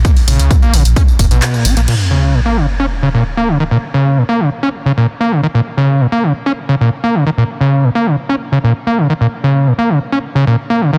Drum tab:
CC |----------------|x---------------|----------------|----------------|
HH |xooxx-oxx-oxx-ox|----------------|----------------|----------------|
TB |xxxxxxxxxxxxxxxx|----------------|----------------|----------------|
CP |------------x---|----------------|----------------|----------------|
BD |o---o---o-o-----|----------------|----------------|----------------|

CC |----------------|----------------|
HH |----------------|----------------|
TB |----------------|----------------|
CP |----------------|----------------|
BD |----------------|----------------|